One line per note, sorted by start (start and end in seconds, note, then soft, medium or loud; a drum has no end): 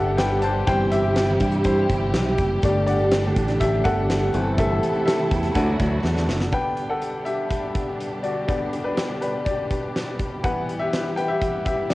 0.00 0.64 G1 medium
0.00 0.66 B2 medium
0.00 0.63 D3 medium
0.00 0.66 D3 medium
0.00 0.32 G3 soft
0.00 0.64 G3 medium
0.00 4.30 G3 medium
0.00 0.31 B3 soft
0.00 0.64 B3 medium
0.00 0.30 D4 soft
0.00 0.66 D4 medium
0.00 0.29 G4 soft
0.00 0.70 G4 medium
0.00 4.29 G4 medium
0.00 0.18 A4 medium
0.00 0.70 D5 medium
0.00 0.70 E5 medium
0.00 0.70 F#5 loud
0.18 0.42 B4 medium
0.18 0.43 G5 medium
0.18 snare medium
0.18 closed hi-hat medium
0.30 0.67 G3 medium
0.30 0.68 B3 medium
0.30 0.68 D4 medium
0.30 0.67 G4 medium
0.42 0.67 C5 medium
0.42 0.68 A5 medium
0.42 closed hi-hat medium
0.66 1.37 G1 loud
0.66 1.04 G2 medium
0.66 2.60 C3 medium
0.66 1.37 E3 medium
0.66 2.61 E3 medium
0.66 1.04 E3 medium
0.66 1.37 G3 medium
0.66 1.04 G3 medium
0.66 1.38 C4 medium
0.66 1.05 C4 medium
0.66 2.60 E4 medium
0.66 1.03 E4 medium
0.66 1.02 G4 medium
0.66 0.91 C5 medium
0.66 0.93 G5 loud
0.66 kick loud
0.66 closed hi-hat medium
0.91 1.62 G4 medium
0.91 1.67 E5 medium
0.91 closed hi-hat medium
1.04 1.28 G3 soft
1.04 1.28 C4 medium
1.04 1.28 E4 medium
1.04 1.27 G4 medium
1.16 snare loud
1.16 closed hi-hat medium
1.28 1.79 G2 medium
1.28 1.78 E3 medium
1.28 1.80 G3 medium
1.28 1.78 C4 medium
1.28 1.77 E4 medium
1.28 1.77 G4 medium
1.40 1.86 G2 medium
1.40 kick medium
1.40 closed hi-hat medium
1.52 closed hi-hat soft
1.64 2.11 E4 medium
1.64 2.11 C5 medium
1.64 kick medium
1.64 closed hi-hat medium
1.77 2.29 G3 soft
1.77 2.27 C4 soft
1.77 2.26 E4 soft
1.77 2.26 G4 medium
1.89 2.12 G1 medium
1.89 kick medium
1.89 closed hi-hat medium
2.14 2.37 B1 medium
2.14 snare medium
2.14 closed hi-hat medium
2.26 2.63 G3 medium
2.26 2.63 C4 medium
2.26 2.63 E4 medium
2.26 2.63 G4 medium
2.38 2.61 F#1 medium
2.38 kick medium
2.38 closed hi-hat medium
2.62 3.32 G1 loud
2.62 2.99 G2 medium
2.62 4.31 A2 medium
2.62 2.99 D3 medium
2.62 4.32 D3 medium
2.62 4.30 G3 medium
2.62 3.00 A3 medium
2.62 4.30 A3 medium
2.62 4.32 D4 medium
2.62 3.00 D4 medium
2.62 4.30 D4 medium
2.62 2.99 G4 medium
2.62 2.98 A4 medium
2.62 kick loud
2.62 closed hi-hat medium
2.86 3.62 D5 medium
2.86 3.57 F#5 medium
2.86 closed hi-hat medium
2.99 3.24 A3 soft
2.99 3.23 D4 medium
2.99 3.23 G4 medium
2.99 3.22 A4 medium
3.11 snare loud
3.11 closed hi-hat medium
3.24 3.74 G2 medium
3.24 3.73 D3 medium
3.24 3.75 A3 medium
3.24 3.73 D4 medium
3.24 3.72 G4 medium
3.24 3.72 A4 medium
3.36 3.81 A1 medium
3.36 kick medium
3.36 closed hi-hat medium
3.48 snare soft
3.48 closed hi-hat soft
3.60 3.83 G4 medium
3.60 3.85 E5 medium
3.60 kick medium
3.60 closed hi-hat medium
3.72 4.23 A3 soft
3.72 4.22 D4 soft
3.72 4.21 G4 soft
3.72 4.20 A4 soft
3.84 4.30 G1 medium
3.84 4.54 A4 medium
3.84 4.60 F#5 loud
3.84 kick medium
3.84 closed hi-hat medium
4.10 snare medium
4.10 closed hi-hat medium
4.20 4.33 A3 medium
4.20 4.34 D4 medium
4.20 4.34 G4 medium
4.20 4.33 A4 medium
4.33 4.79 G1 medium
4.33 4.94 G2 medium
4.33 5.55 C3 medium
4.33 4.65 E3 soft
4.33 4.95 E3 medium
4.33 5.55 E3 medium
4.33 4.66 A3 soft
4.33 4.95 A3 medium
4.33 5.54 A3 medium
4.33 4.66 C4 medium
4.33 4.94 C4 medium
4.33 6.52 E4 medium
4.33 4.94 E4 medium
4.33 4.92 G4 medium
4.33 5.55 A4 medium
4.33 closed hi-hat medium
4.58 5.04 A4 medium
4.58 5.03 E5 medium
4.58 kick loud
4.58 closed hi-hat medium
4.83 closed hi-hat medium
4.93 5.18 A3 soft
4.93 5.18 C4 medium
4.93 5.17 E4 medium
4.93 5.17 G4 medium
5.05 5.52 A4 medium
5.05 5.56 E5 medium
5.05 snare loud
5.05 closed hi-hat medium
5.18 5.54 G2 medium
5.18 5.53 E3 medium
5.18 5.54 A3 medium
5.18 5.55 C4 medium
5.18 5.55 E4 medium
5.18 5.55 G4 medium
5.31 5.54 E2 medium
5.31 kick medium
5.31 closed hi-hat medium
5.43 snare soft
5.43 closed hi-hat soft
5.54 5.78 D2 loud
5.54 5.67 D3 medium
5.54 6.52 D3 medium
5.54 5.67 E3 medium
5.54 6.49 E3 soft
5.54 6.49 F#3 medium
5.54 6.52 F#3 medium
5.54 5.67 A3 medium
5.54 6.52 A3 medium
5.54 5.67 D4 medium
5.54 6.49 D4 medium
5.54 6.52 F#4 medium
5.54 5.67 F#4 medium
5.54 6.25 A4 medium
5.54 5.65 D5 medium
5.54 6.24 F#5 medium
5.54 kick medium
5.54 closed hi-hat medium
5.66 6.17 A3 soft
5.66 6.17 D4 soft
5.66 6.15 F#4 soft
5.66 6.14 D5 medium
5.80 6.03 D2 medium
5.80 kick medium
5.80 closed hi-hat medium
6.04 6.27 E2 medium
6.04 snare soft
6.15 6.54 A3 soft
6.15 6.53 D4 medium
6.15 6.53 F#4 medium
6.15 6.52 D5 medium
6.15 snare medium
6.28 6.51 F#1 medium
6.28 snare medium
6.41 snare medium
6.52 11.94 B2 medium
6.52 6.85 D3 medium
6.52 10.40 D3 medium
6.52 11.94 G3 medium
6.52 6.85 G3 soft
6.52 6.85 B3 medium
6.52 10.40 D4 medium
6.52 11.94 G4 medium
6.52 6.87 B4 medium
6.52 6.87 G5 loud
6.52 kick loud
6.52 closed hi-hat medium
6.77 closed hi-hat medium
6.89 7.24 A4 medium
6.89 7.27 F#5 medium
7.02 closed hi-hat medium
7.25 8.20 G4 medium
7.25 8.26 E5 medium
7.25 closed hi-hat medium
7.51 kick medium
7.51 closed hi-hat medium
7.75 kick medium
7.75 closed hi-hat medium
8.00 closed hi-hat medium
8.23 8.47 F#4 medium
8.23 8.46 D5 medium
8.23 closed hi-hat medium
8.48 10.39 D3 medium
8.48 10.40 G3 soft
8.48 10.40 B3 medium
8.48 8.83 G4 medium
8.48 8.82 D5 medium
8.48 kick medium
8.48 closed hi-hat medium
8.73 closed hi-hat medium
8.84 9.20 D4 medium
8.84 9.20 B4 medium
8.97 snare medium
8.97 closed hi-hat medium
9.21 9.45 D4 soft
9.21 9.47 B4 medium
9.21 closed hi-hat medium
9.45 10.16 G4 soft
9.45 10.15 D5 medium
9.45 kick medium
9.45 closed hi-hat medium
9.71 kick medium
9.71 closed hi-hat medium
9.96 snare medium
9.96 closed hi-hat medium
10.19 kick medium
10.19 closed hi-hat medium
10.43 11.13 E3 medium
10.43 11.94 E3 medium
10.43 11.13 G3 soft
10.43 11.13 B3 medium
10.43 11.94 E4 soft
10.43 10.78 B4 medium
10.43 10.81 F#5 medium
10.43 kick loud
10.43 closed hi-hat medium
10.69 closed hi-hat medium
10.79 11.15 G4 medium
10.79 11.18 E5 medium
10.93 snare medium
10.93 closed hi-hat medium
11.16 11.23 B4 medium
11.16 11.21 G5 medium
11.16 closed hi-hat medium
11.28 11.63 G4 medium
11.28 11.64 E5 medium
11.41 kick medium
11.41 closed hi-hat medium
11.65 11.89 G4 medium
11.65 11.91 E5 medium
11.65 kick medium
11.65 closed hi-hat medium
11.89 11.94 D5 medium
11.89 snare medium
11.89 closed hi-hat medium